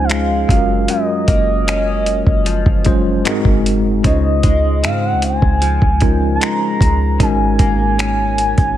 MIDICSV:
0, 0, Header, 1, 6, 480
1, 0, Start_track
1, 0, Key_signature, -5, "major"
1, 0, Tempo, 789474
1, 536, Time_signature, 4, 2, 24, 8
1, 5335, End_track
2, 0, Start_track
2, 0, Title_t, "Soft synth lead"
2, 0, Program_c, 0, 80
2, 25, Note_on_c, 0, 76, 72
2, 69, Note_on_c, 0, 77, 97
2, 78, Note_off_c, 0, 76, 0
2, 547, Note_on_c, 0, 75, 99
2, 556, Note_off_c, 0, 77, 0
2, 2222, Note_off_c, 0, 75, 0
2, 2467, Note_on_c, 0, 75, 96
2, 2946, Note_on_c, 0, 77, 90
2, 2955, Note_off_c, 0, 75, 0
2, 3069, Note_on_c, 0, 78, 88
2, 3078, Note_off_c, 0, 77, 0
2, 3188, Note_on_c, 0, 80, 101
2, 3197, Note_off_c, 0, 78, 0
2, 3859, Note_off_c, 0, 80, 0
2, 3864, Note_on_c, 0, 81, 79
2, 3909, Note_on_c, 0, 82, 106
2, 3918, Note_off_c, 0, 81, 0
2, 4382, Note_off_c, 0, 82, 0
2, 4390, Note_on_c, 0, 80, 113
2, 5335, Note_off_c, 0, 80, 0
2, 5335, End_track
3, 0, Start_track
3, 0, Title_t, "Tine electric piano"
3, 0, Program_c, 1, 4
3, 0, Control_c, 1, 64, 127
3, 0, Note_on_c, 1, 56, 69
3, 0, Note_on_c, 1, 61, 62
3, 0, Note_on_c, 1, 63, 67
3, 0, Note_on_c, 1, 65, 66
3, 0, Note_on_c, 1, 72, 78
3, 273, Note_off_c, 1, 56, 0
3, 274, Note_off_c, 1, 61, 0
3, 275, Note_off_c, 1, 63, 0
3, 277, Note_off_c, 1, 65, 0
3, 278, Note_off_c, 1, 72, 0
3, 295, Note_on_c, 1, 56, 76
3, 297, Note_on_c, 1, 61, 64
3, 301, Note_on_c, 1, 65, 62
3, 303, Note_on_c, 1, 66, 65
3, 305, Control_c, 1, 64, 0
3, 306, Note_on_c, 1, 68, 65
3, 340, Note_off_c, 1, 68, 0
3, 345, Note_on_c, 1, 70, 78
3, 399, Control_c, 1, 64, 127
3, 1064, Note_off_c, 1, 56, 0
3, 1065, Note_off_c, 1, 61, 0
3, 1067, Note_off_c, 1, 65, 0
3, 1068, Note_off_c, 1, 66, 0
3, 1089, Note_off_c, 1, 70, 0
3, 1734, Note_on_c, 1, 56, 81
3, 1737, Note_on_c, 1, 61, 76
3, 1739, Note_on_c, 1, 65, 73
3, 1741, Note_on_c, 1, 54, 77
3, 1743, Note_on_c, 1, 72, 92
3, 1967, Note_off_c, 1, 56, 0
3, 1974, Note_on_c, 1, 56, 91
3, 1976, Note_off_c, 1, 61, 0
3, 1976, Note_on_c, 1, 60, 82
3, 1977, Note_off_c, 1, 65, 0
3, 1978, Note_off_c, 1, 54, 0
3, 1979, Note_on_c, 1, 63, 82
3, 1980, Note_off_c, 1, 72, 0
3, 1980, Note_on_c, 1, 66, 82
3, 1984, Note_on_c, 1, 70, 96
3, 1985, Control_c, 1, 64, 0
3, 2080, Control_c, 1, 64, 127
3, 2359, Note_off_c, 1, 56, 0
3, 2360, Note_off_c, 1, 60, 0
3, 2361, Note_off_c, 1, 63, 0
3, 2362, Note_off_c, 1, 66, 0
3, 2364, Note_off_c, 1, 70, 0
3, 2454, Note_on_c, 1, 56, 73
3, 2457, Note_on_c, 1, 61, 67
3, 2459, Note_on_c, 1, 63, 65
3, 2462, Note_on_c, 1, 65, 66
3, 2463, Control_c, 1, 64, 0
3, 2463, Note_on_c, 1, 72, 81
3, 2584, Control_c, 1, 64, 127
3, 3064, Note_off_c, 1, 56, 0
3, 3066, Note_off_c, 1, 61, 0
3, 3067, Note_off_c, 1, 63, 0
3, 3068, Note_off_c, 1, 65, 0
3, 3069, Note_off_c, 1, 72, 0
3, 3655, Note_on_c, 1, 56, 68
3, 3657, Note_on_c, 1, 61, 62
3, 3658, Note_on_c, 1, 63, 65
3, 3661, Note_on_c, 1, 65, 64
3, 3664, Note_on_c, 1, 70, 82
3, 4112, Note_off_c, 1, 56, 0
3, 4113, Note_off_c, 1, 61, 0
3, 4114, Note_off_c, 1, 63, 0
3, 4115, Note_off_c, 1, 65, 0
3, 4117, Note_off_c, 1, 70, 0
3, 4374, Note_on_c, 1, 56, 70
3, 4376, Note_on_c, 1, 61, 66
3, 4379, Note_on_c, 1, 63, 70
3, 4382, Note_on_c, 1, 66, 67
3, 4383, Control_c, 1, 64, 0
3, 4383, Note_on_c, 1, 70, 78
3, 4504, Control_c, 1, 64, 127
3, 4984, Note_off_c, 1, 56, 0
3, 4985, Note_off_c, 1, 61, 0
3, 4987, Note_off_c, 1, 63, 0
3, 4988, Note_off_c, 1, 66, 0
3, 4989, Note_off_c, 1, 70, 0
3, 5335, End_track
4, 0, Start_track
4, 0, Title_t, "Clean electric guitar"
4, 0, Program_c, 2, 27
4, 0, Note_on_c, 2, 49, 79
4, 0, Note_on_c, 2, 53, 66
4, 0, Note_on_c, 2, 60, 62
4, 57, Note_on_c, 2, 56, 58
4, 296, Note_on_c, 2, 42, 74
4, 344, Note_off_c, 2, 56, 0
4, 344, Note_off_c, 2, 60, 0
4, 345, Note_off_c, 2, 49, 0
4, 529, Note_off_c, 2, 42, 0
4, 537, Note_on_c, 2, 42, 76
4, 555, Note_off_c, 2, 53, 0
4, 778, Note_on_c, 2, 58, 60
4, 1018, Note_on_c, 2, 61, 64
4, 1498, Note_on_c, 2, 53, 69
4, 1973, Note_off_c, 2, 42, 0
4, 1976, Note_on_c, 2, 44, 79
4, 2025, Note_off_c, 2, 53, 0
4, 2025, Note_off_c, 2, 58, 0
4, 2025, Note_off_c, 2, 61, 0
4, 2459, Note_on_c, 2, 49, 80
4, 2504, Note_off_c, 2, 44, 0
4, 2700, Note_on_c, 2, 56, 59
4, 2937, Note_on_c, 2, 60, 63
4, 3416, Note_on_c, 2, 53, 70
4, 3894, Note_off_c, 2, 56, 0
4, 3896, Note_on_c, 2, 56, 59
4, 4376, Note_on_c, 2, 44, 77
4, 4377, Note_off_c, 2, 49, 0
4, 4424, Note_off_c, 2, 53, 0
4, 4424, Note_off_c, 2, 60, 0
4, 4614, Note_off_c, 2, 56, 0
4, 4616, Note_on_c, 2, 58, 59
4, 4855, Note_on_c, 2, 61, 63
4, 5335, Note_off_c, 2, 44, 0
4, 5335, Note_off_c, 2, 58, 0
4, 5335, Note_off_c, 2, 61, 0
4, 5335, End_track
5, 0, Start_track
5, 0, Title_t, "808-style bass"
5, 0, Program_c, 3, 38
5, 0, Note_on_c, 3, 37, 103
5, 273, Note_off_c, 3, 37, 0
5, 297, Note_on_c, 3, 30, 99
5, 527, Note_off_c, 3, 30, 0
5, 777, Note_on_c, 3, 30, 97
5, 1353, Note_off_c, 3, 30, 0
5, 1377, Note_on_c, 3, 30, 97
5, 1607, Note_off_c, 3, 30, 0
5, 1617, Note_on_c, 3, 30, 101
5, 1962, Note_off_c, 3, 30, 0
5, 2098, Note_on_c, 3, 30, 92
5, 2443, Note_off_c, 3, 30, 0
5, 2458, Note_on_c, 3, 37, 108
5, 2687, Note_off_c, 3, 37, 0
5, 2698, Note_on_c, 3, 37, 98
5, 2938, Note_on_c, 3, 44, 84
5, 2947, Note_off_c, 3, 37, 0
5, 3118, Note_on_c, 3, 37, 94
5, 3127, Note_off_c, 3, 44, 0
5, 3288, Note_off_c, 3, 37, 0
5, 3297, Note_on_c, 3, 37, 97
5, 3527, Note_off_c, 3, 37, 0
5, 3538, Note_on_c, 3, 37, 103
5, 3883, Note_off_c, 3, 37, 0
5, 4138, Note_on_c, 3, 37, 101
5, 4368, Note_off_c, 3, 37, 0
5, 4378, Note_on_c, 3, 32, 109
5, 4608, Note_off_c, 3, 32, 0
5, 4617, Note_on_c, 3, 32, 94
5, 5193, Note_off_c, 3, 32, 0
5, 5216, Note_on_c, 3, 32, 92
5, 5331, Note_off_c, 3, 32, 0
5, 5335, End_track
6, 0, Start_track
6, 0, Title_t, "Drums"
6, 58, Note_on_c, 9, 42, 64
6, 68, Note_on_c, 9, 26, 102
6, 119, Note_off_c, 9, 42, 0
6, 128, Note_off_c, 9, 26, 0
6, 298, Note_on_c, 9, 36, 95
6, 306, Note_on_c, 9, 42, 68
6, 358, Note_off_c, 9, 36, 0
6, 367, Note_off_c, 9, 42, 0
6, 537, Note_on_c, 9, 42, 72
6, 598, Note_off_c, 9, 42, 0
6, 777, Note_on_c, 9, 36, 72
6, 777, Note_on_c, 9, 42, 65
6, 838, Note_off_c, 9, 36, 0
6, 838, Note_off_c, 9, 42, 0
6, 1021, Note_on_c, 9, 42, 73
6, 1027, Note_on_c, 9, 26, 111
6, 1082, Note_off_c, 9, 42, 0
6, 1087, Note_off_c, 9, 26, 0
6, 1255, Note_on_c, 9, 42, 60
6, 1316, Note_off_c, 9, 42, 0
6, 1378, Note_on_c, 9, 36, 79
6, 1438, Note_off_c, 9, 36, 0
6, 1496, Note_on_c, 9, 42, 64
6, 1557, Note_off_c, 9, 42, 0
6, 1618, Note_on_c, 9, 36, 81
6, 1678, Note_off_c, 9, 36, 0
6, 1730, Note_on_c, 9, 42, 47
6, 1739, Note_on_c, 9, 36, 91
6, 1791, Note_off_c, 9, 42, 0
6, 1800, Note_off_c, 9, 36, 0
6, 1978, Note_on_c, 9, 42, 64
6, 1988, Note_on_c, 9, 26, 101
6, 2039, Note_off_c, 9, 42, 0
6, 2048, Note_off_c, 9, 26, 0
6, 2098, Note_on_c, 9, 36, 93
6, 2159, Note_off_c, 9, 36, 0
6, 2227, Note_on_c, 9, 42, 70
6, 2287, Note_off_c, 9, 42, 0
6, 2458, Note_on_c, 9, 36, 110
6, 2458, Note_on_c, 9, 42, 72
6, 2519, Note_off_c, 9, 36, 0
6, 2519, Note_off_c, 9, 42, 0
6, 2696, Note_on_c, 9, 42, 63
6, 2697, Note_on_c, 9, 36, 77
6, 2756, Note_off_c, 9, 42, 0
6, 2758, Note_off_c, 9, 36, 0
6, 2941, Note_on_c, 9, 42, 73
6, 2946, Note_on_c, 9, 26, 112
6, 3001, Note_off_c, 9, 42, 0
6, 3007, Note_off_c, 9, 26, 0
6, 3175, Note_on_c, 9, 42, 66
6, 3236, Note_off_c, 9, 42, 0
6, 3297, Note_on_c, 9, 36, 83
6, 3358, Note_off_c, 9, 36, 0
6, 3415, Note_on_c, 9, 42, 62
6, 3476, Note_off_c, 9, 42, 0
6, 3537, Note_on_c, 9, 36, 83
6, 3598, Note_off_c, 9, 36, 0
6, 3651, Note_on_c, 9, 42, 46
6, 3659, Note_on_c, 9, 36, 95
6, 3712, Note_off_c, 9, 42, 0
6, 3720, Note_off_c, 9, 36, 0
6, 3900, Note_on_c, 9, 42, 64
6, 3909, Note_on_c, 9, 26, 107
6, 3961, Note_off_c, 9, 42, 0
6, 3970, Note_off_c, 9, 26, 0
6, 4138, Note_on_c, 9, 36, 90
6, 4145, Note_on_c, 9, 42, 68
6, 4199, Note_off_c, 9, 36, 0
6, 4206, Note_off_c, 9, 42, 0
6, 4377, Note_on_c, 9, 36, 112
6, 4378, Note_on_c, 9, 42, 75
6, 4438, Note_off_c, 9, 36, 0
6, 4438, Note_off_c, 9, 42, 0
6, 4616, Note_on_c, 9, 36, 76
6, 4616, Note_on_c, 9, 42, 59
6, 4676, Note_off_c, 9, 42, 0
6, 4677, Note_off_c, 9, 36, 0
6, 4859, Note_on_c, 9, 42, 70
6, 4865, Note_on_c, 9, 26, 113
6, 4920, Note_off_c, 9, 42, 0
6, 4926, Note_off_c, 9, 26, 0
6, 5097, Note_on_c, 9, 42, 65
6, 5158, Note_off_c, 9, 42, 0
6, 5215, Note_on_c, 9, 42, 36
6, 5216, Note_on_c, 9, 36, 89
6, 5275, Note_off_c, 9, 42, 0
6, 5277, Note_off_c, 9, 36, 0
6, 5335, End_track
0, 0, End_of_file